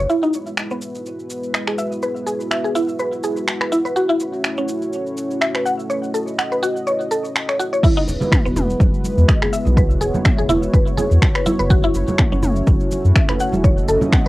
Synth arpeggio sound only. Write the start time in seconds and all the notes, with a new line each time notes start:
0.09 E4
0.23 D#4
0.71 B3
1.54 D#5
1.67 G#4
1.78 E5
2.03 B4
2.26 G#4
2.51 E5
2.64 G#4
2.75 E4
2.99 B4
3.24 G#4
3.61 B4
3.72 E4
3.85 B4
3.96 F#4
4.09 E4
4.58 C#4
5.41 E5
5.55 B4
5.66 F#5
5.90 C#5
6.14 A4
6.38 F#5
6.52 B4
6.63 F#4
6.87 C#5
7.11 A4
7.49 C#5
7.59 F#4
7.73 C#5
7.84 E4
7.97 D#4
8.45 B3
9.28 D#5
9.42 G#4
9.53 E5
9.77 B4
10.01 G#4
10.25 E5
10.38 G#4
10.49 E4
10.73 B4
10.97 G#4
11.35 B4
11.46 E4
11.59 B4
11.70 F#4
11.84 E4
12.32 C#4
13.16 E5
13.29 B4
13.40 F#5
13.64 C#5
13.88 A4
14.12 F#5